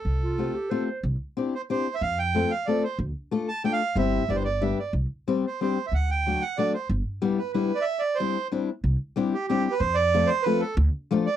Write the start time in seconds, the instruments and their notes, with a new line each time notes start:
Already playing: accordion A4
0.05 upright bass C2
0.22 clarinet F4
0.38 steel-string acoustic guitar A3 C4 F4 G4
0.55 clarinet G4
0.70 steel-string acoustic guitar A3 C4 F4 G4, clarinet C5
1.03 upright bass C2
1.37 steel-string acoustic guitar C4 D4 E4 G4
1.55 accordion C5
1.70 steel-string acoustic guitar C4 D4 E4 G4, accordion C5
1.95 accordion E5
2.01 upright bass F2, accordion F5
2.19 accordion G5
2.35 steel-string acoustic guitar A3 C4 F4 A4
2.51 accordion F5
2.66 steel-string acoustic guitar A3 C4 F4 A4, accordion D5
2.84 accordion C5
2.99 upright bass D2
3.31 steel-string acoustic guitar A3 D4 F4 A4
3.48 accordion A5
3.64 steel-string acoustic guitar A3 D4 F4 A4, accordion G5
3.73 accordion F5
3.96 upright bass G1, steel-string acoustic guitar G3 C4 E4 G4, accordion E5
4.28 upright bass G1, steel-string acoustic guitar G3 B3 D4 G4, accordion D5
4.36 accordion C5
4.45 accordion D5
4.61 steel-string acoustic guitar G3 B3 D4 G4, accordion E5
4.78 accordion D5
4.93 upright bass C2
5.28 steel-string acoustic guitar G3 C4 D4 G4
5.47 accordion C5
5.61 steel-string acoustic guitar G3 C4 D4 G4, accordion C5
5.87 accordion E5
5.92 upright bass D2, accordion F#5
6.11 accordion G5
6.26 steel-string acoustic guitar F#3 A3 D4 F#4
6.41 accordion F#5
6.57 steel-string acoustic guitar F#3 A3 D4 F#4, accordion D5
6.74 accordion C5
6.89 upright bass G1
7.22 steel-string acoustic guitar G3 B3 D4 E4
7.38 accordion B4
7.53 steel-string acoustic guitar G3 B3 D4 E4, accordion B4
7.75 accordion D5
7.81 accordion E5
7.99 accordion D5
8.15 accordion C5
8.20 steel-string acoustic guitar G3 C4 D4 E4
8.52 steel-string acoustic guitar G3 C4 D4 E4
8.84 upright bass C2
9.16 steel-string acoustic guitar G3 C4 D4 E4 G4
9.34 accordion G4
9.48 steel-string acoustic guitar G3 C4 D4 E4 G4, accordion G4
9.71 accordion B4
9.79 upright bass F2, accordion C5
9.94 accordion D5
10.14 steel-string acoustic guitar F3 A3 C4 F4 A4
10.26 accordion C5
10.43 steel-string acoustic guitar F3 A3 F4, accordion B4
10.47 steel-string acoustic guitar C4 A4
10.60 accordion A4
10.77 upright bass D2
11.11 steel-string acoustic guitar F3 A3 D4 F4 A4
11.26 accordion D5